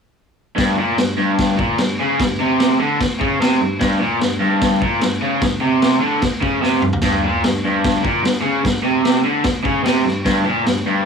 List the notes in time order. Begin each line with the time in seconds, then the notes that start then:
0.56 G2, kick, snare, crash
0.77 A#2
0.98 G2, snare, crash
1.18 G2
1.39 kick, snare, crash
1.58 A#2, kick
1.78 G2, snare, crash
2.00 C#3
2.20 G2, kick, snare, crash
2.40 C3
2.60 snare, crash
2.80 D3
3.00 muted overdriven electric guitar stroke, kick, snare, crash
3.20 C#3, kick
3.40 C3, snare, crash
3.61 G2
3.80 G2, kick, snare, crash
3.99 A#2
4.20 G2, snare, crash
4.40 G2
4.62 kick, snare, crash
4.82 A#2, kick
5.01 G2, snare, crash
5.22 C#3
5.41 G2, kick, snare, crash
5.61 C3
5.82 snare, crash
6.01 D3
6.22 muted overdriven electric guitar stroke, kick, snare, crash
6.42 C#3, kick
6.62 C3, snare
6.82 G2, mid tom
6.93 floor tom
7.02 G2, kick, snare, splash, crash
7.24 A#2
7.44 G2, snare, crash
7.65 G2
7.84 kick, snare, crash
8.02 A#2, kick
8.22 G2, snare, crash
8.42 C#3
8.63 G2, kick, snare, crash
8.83 C3
9.05 snare, crash
9.24 D3
9.43 muted overdriven electric guitar stroke, kick, snare, crash
9.64 C#3, kick
9.84 C3, snare, crash
10.05 G2
10.25 G2, kick, snare, crash
10.45 A#2
10.65 G2, snare, crash
10.87 G2